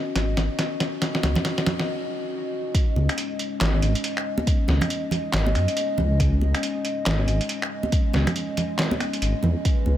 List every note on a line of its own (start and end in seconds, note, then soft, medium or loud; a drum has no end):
0.00 2.70 C#4 medium
0.00 2.71 F#4 medium
0.00 2.70 D#5 medium
0.15 0.36 G#1 medium
0.15 snare medium
0.15 closed hi-hat medium
0.37 0.49 G#1 loud
0.37 snare medium
0.37 closed hi-hat soft
0.59 snare medium
0.59 closed hi-hat medium
0.80 snare medium
0.80 closed hi-hat medium
1.02 snare medium
1.02 closed hi-hat medium
1.15 snare medium
1.23 1.35 C#2 loud
1.23 snare medium
1.23 closed hi-hat soft
1.23 high conga medium
1.35 snare medium
1.35 low conga medium
1.45 snare loud
1.45 closed hi-hat medium
1.58 snare medium
1.66 snare loud
1.66 closed hi-hat medium
1.66 low conga medium
1.79 snare medium
2.74 9.97 G#3 medium
2.74 9.97 C#4 medium
2.74 9.63 D#5 medium
2.74 kick loud
2.74 closed hi-hat medium
2.96 3.08 C#2 loud
2.96 high conga medium
3.09 finger snap medium
3.09 closed hi-hat medium
3.18 closed hi-hat medium
3.39 closed hi-hat medium
3.61 3.81 G#1 medium
3.61 snare loud
3.61 clap medium
3.61 closed hi-hat medium
3.82 3.94 G#1 loud
3.82 closed hi-hat medium
3.95 closed hi-hat medium
4.04 closed hi-hat medium
4.17 finger snap medium
4.38 high conga medium
4.47 kick loud
4.47 closed hi-hat medium
4.68 4.81 C#2 loud
4.68 snare medium
4.68 high conga medium
4.81 finger snap medium
4.81 closed hi-hat medium
4.81 low conga loud
4.90 closed hi-hat medium
5.11 closed hi-hat medium
5.11 low conga medium
5.33 5.57 G#1 loud
5.33 snare loud
5.33 clap medium
5.33 closed hi-hat medium
5.46 high conga medium
5.55 5.67 F#2 medium
5.55 finger snap soft
5.55 closed hi-hat medium
5.68 closed hi-hat medium
5.77 closed hi-hat medium
5.98 6.40 C#2 medium
5.98 high conga medium
5.98 low conga medium
6.20 kick loud
6.20 closed hi-hat medium
6.41 6.53 C#2 loud
6.41 high conga medium
6.55 finger snap medium
6.55 closed hi-hat medium
6.63 closed hi-hat medium
6.85 closed hi-hat medium
7.06 7.26 G#1 medium
7.06 snare loud
7.06 clap medium
7.06 closed hi-hat medium
7.28 7.40 G#1 loud
7.28 closed hi-hat medium
7.41 closed hi-hat medium
7.49 closed hi-hat medium
7.62 finger snap medium
7.83 high conga medium
7.92 kick loud
7.92 closed hi-hat medium
8.13 8.26 C#2 loud
8.13 snare medium
8.13 high conga medium
8.27 finger snap medium
8.27 closed hi-hat medium
8.27 low conga medium
8.36 closed hi-hat medium
8.57 closed hi-hat medium
8.57 low conga medium
8.79 snare loud
8.79 clap medium
8.79 closed hi-hat medium
8.91 high conga medium
9.00 finger snap medium
9.00 closed hi-hat medium
9.13 closed hi-hat medium
9.22 9.34 G#1 medium
9.22 closed hi-hat medium
9.43 9.55 E2 medium
9.43 high conga medium
9.43 low conga medium
9.65 9.97 B4 medium
9.65 kick loud
9.65 closed hi-hat medium
9.86 9.97 C#2 loud
9.86 high conga medium